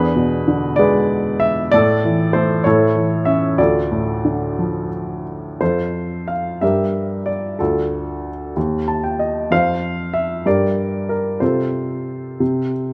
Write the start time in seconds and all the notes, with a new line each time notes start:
Already playing: E2 D4 G#4 B4
0.16 B2
0.48 D3
0.76 G#3 G#4 B4 D5
1.40 E5
1.72 A2 A4 D5
2.05 E3
2.33 A3 C5
2.64 A2 E4 A4 C#5
2.96 E3
3.25 C#4 E5
3.58 D2 F4 A4 D5
3.92 A2
4.25 D3
4.59 F3
5.61 F2 F4 A4 C5
6.28 F5
6.61 G2 G4 A#4 E5
7.26 D5
7.59 D2 D4 F4 A4
8.56 D#2
8.88 A5
9.04 G5
9.19 D#5
9.51 F2 C5 F5
10.14 E5
10.46 G2 G4 A#4 D5
11.09 A#4
11.40 C3 F4 A4 C5
12.40 C3